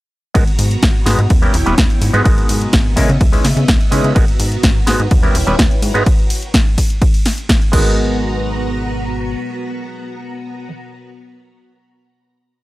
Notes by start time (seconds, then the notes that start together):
0.34 G#1 G#3 B3 D#4 F#4 A#4 A#5, kick, closed hi-hat, ride
0.47 closed hi-hat
0.59 G#2, open hi-hat
0.71 closed hi-hat
0.83 G#1, kick, snare, closed hi-hat, ride
1.06 G#2 G#3 B3 D#4 F#4 B4, snare, open hi-hat
1.19 G#2, closed hi-hat
1.30 D#2 E4 C#5 G5, kick, closed hi-hat, ride
1.42 G3 B3 C#4 E4 A#4, closed hi-hat
1.54 D#1, open hi-hat
1.66 D#1 G3 B3 C#4 E4 B4, closed hi-hat
1.78 D#2, kick, snare, closed hi-hat, ride
1.90 closed hi-hat
2.01 G#2 F#4 A#5, open hi-hat
2.13 G#2 G#3 B3 D#4 F#4 B4, closed hi-hat
2.24 G#1 G#3 B3 D#4 F#4 A#4, kick, closed hi-hat, ride
2.38 closed hi-hat
2.49 G#2, open hi-hat
2.62 closed hi-hat
2.73 G#1, kick, snare, closed hi-hat, ride
2.96 C#3 G#3 C#4 D#4 E4 A#4 D#5 E5, kick, open hi-hat
3.09 C#3, closed hi-hat
3.21 C#2, kick, closed hi-hat, ride
3.33 G#3 C#4 D#4 E4 B4, open hi-hat
3.44 C#3, snare, open hi-hat
3.57 C#3, closed hi-hat
3.68 C#2, kick, snare, closed hi-hat, ride
3.81 closed hi-hat
3.91 C#3 G#3 C#4 D#4 E4 B4, open hi-hat
4.04 C#3, closed hi-hat
4.15 G#1 G#3 B3 D#4 F#4 A#4 A#5, kick, closed hi-hat, ride
4.28 closed hi-hat
4.39 G#2, open hi-hat
4.52 closed hi-hat
4.63 G#1, kick, snare, closed hi-hat, ride
4.87 G#2 G#3 B3 D#4 F#4 B4, snare, open hi-hat
4.99 G#2, closed hi-hat
5.11 D#2 E4 B4 C#5 G5, kick, closed hi-hat, ride
5.23 G3 B3 C#4 E4 A#4, closed hi-hat
5.35 D#1, open hi-hat
5.47 D#1 G3 B3 C#4 E4 B4, closed hi-hat
5.59 D#2, kick, snare, closed hi-hat, ride
5.71 closed hi-hat
5.82 G#2 F#4 A#5, open hi-hat
5.94 G#2 G#3 B3 D#4 F#4 B4, closed hi-hat
6.06 kick, closed hi-hat, ride
6.19 closed hi-hat
6.30 open hi-hat
6.43 closed hi-hat
6.54 kick, snare, closed hi-hat, ride
6.78 kick, open hi-hat
6.90 closed hi-hat
7.02 kick, closed hi-hat, ride
7.14 open hi-hat
7.26 snare, open hi-hat
7.38 closed hi-hat
7.49 kick, snare, closed hi-hat, ride
7.62 closed hi-hat
7.72 G#1 G#3 B3 D#4 F#4 A#4 A#5, kick, crash